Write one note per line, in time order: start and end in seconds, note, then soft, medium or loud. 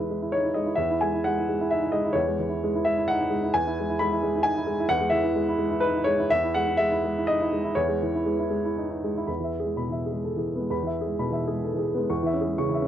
0.00 0.75 E2 soft
0.00 0.80 E3 soft
0.00 0.10 G#3 soft
0.00 0.22 E4 soft
0.00 0.80 B4 medium
0.10 0.28 G#3 soft
0.22 0.39 E4 soft
0.32 0.44 D#4 soft
0.32 0.55 C#5 medium
0.44 0.62 E4 soft
0.54 0.74 G#3 soft
0.54 0.78 D#5 medium
0.66 0.78 E4 soft
0.75 2.12 E2 soft
0.75 1.00 E5 medium
0.90 1.08 E4 soft
1.01 1.20 G#3 soft
1.01 1.24 G#5 medium
1.14 1.32 E4 soft
1.24 1.44 G#3 soft
1.24 1.71 F#5 medium
1.39 1.56 E4 soft
1.49 1.67 G#3 soft
1.61 1.78 E4 soft
1.71 1.83 D#4 soft
1.71 1.93 E5 medium
1.83 2.01 E4 soft
1.92 2.11 G#3 soft
1.92 2.15 D#5 medium
2.05 2.23 E4 soft
2.13 3.50 E2 medium
2.13 2.84 C#5 medium
2.28 2.46 G#3 soft
2.39 2.58 E3 soft
2.49 2.69 E4 soft
2.64 2.82 G#3 medium
2.75 2.93 E4 soft
2.85 3.04 G#3 soft
2.85 3.08 E5 medium
2.98 3.16 E4 soft
3.08 3.21 D#4 soft
3.08 3.54 F#5 medium
3.21 3.39 E4 soft
3.30 3.49 G#3 soft
3.43 3.54 E4 soft
3.54 4.87 E2 medium
3.54 3.99 G#5 medium
3.67 3.84 E4 medium
3.80 3.97 G#3 soft
3.89 4.07 E4 soft
3.99 4.19 G#3 medium
3.99 4.45 B5 medium
4.12 4.30 E4 soft
4.23 4.41 G#3 medium
4.36 4.53 E4 medium
4.43 4.56 D#4 medium
4.43 4.90 G#5 loud
4.57 4.75 E4 soft
4.67 4.86 G#3 medium
4.80 4.98 E4 medium
4.89 6.27 E2 medium
4.89 5.13 F#5 loud
5.01 5.20 G#3 medium
5.10 5.31 E3 medium
5.10 5.59 E5 medium
5.24 5.43 E4 medium
5.35 5.55 G#3 medium
5.49 5.68 E4 medium
5.59 5.79 G#3 medium
5.70 5.90 E4 medium
5.80 5.95 D#4 soft
5.80 6.06 B4 medium
5.96 6.15 E4 medium
6.04 6.26 G#3 medium
6.04 6.29 C#5 medium
6.19 6.31 E4 medium
6.30 7.72 E2 medium
6.30 6.54 E5 loud
6.43 6.62 E4 medium
6.54 6.74 G#3 medium
6.54 6.78 F#5 medium
6.67 6.86 E4 soft
6.77 6.98 G#3 medium
6.77 7.26 E5 medium
6.92 7.10 E4 medium
7.04 7.23 G#3 medium
7.18 7.35 E4 medium
7.27 7.40 D#4 soft
7.27 7.76 D#5 medium
7.41 7.60 E4 medium
7.53 7.72 G#3 soft
7.64 7.84 E4 medium
7.75 9.25 E2 medium
7.75 8.78 C#5 medium
7.89 8.09 G#3 soft
8.02 8.23 E3 soft
8.15 8.36 E4 soft
8.26 8.47 G#3 medium
8.39 8.60 E4 soft
8.50 8.72 G#3 soft
8.65 8.86 E4 soft
8.78 8.91 D#4 soft
8.90 9.11 E4 soft
9.04 9.24 G#3 soft
9.17 9.29 E4 medium
9.27 10.67 E2 soft
9.27 9.53 B5 soft
9.40 9.59 E3 soft
9.44 9.70 E5 soft
9.60 9.85 G#4 soft
9.64 9.83 G#3 soft
9.76 9.95 B2 soft
9.76 10.02 B5 soft
9.89 10.08 E3 soft
9.89 10.17 E5 soft
10.06 10.32 G#4 soft
10.12 10.50 G#3 soft
10.24 10.40 A4 soft
10.36 10.55 E3 soft
10.36 10.64 G#4 soft
10.55 10.78 G#3 soft
10.55 10.81 B3 soft
10.70 12.06 E2 soft
10.70 10.96 B5 soft
10.83 11.01 E3 soft
10.87 11.11 E5 soft
11.01 11.26 G#4 soft
11.06 11.25 G#3 soft
11.19 11.37 B2 soft
11.19 11.43 B5 soft
11.30 11.48 E3 soft
11.30 11.58 E5 soft
11.48 11.89 G#3 soft
11.48 11.73 G#4 soft
11.64 11.79 A4 soft
11.73 11.93 E3 soft
11.78 12.04 G#4 soft
11.94 12.10 G#3 soft
11.94 12.10 B3 soft
12.10 12.88 E2 medium
12.10 12.35 C#6 soft
12.23 12.41 E3 soft
12.23 12.51 E5 soft
12.33 12.52 C#4 soft
12.41 12.66 G#4 soft
12.45 12.64 G#3 soft
12.58 12.77 C#3 soft
12.58 12.83 C#6 medium
12.69 12.88 E3 soft
12.74 12.88 E5 soft
12.82 12.88 C#4 soft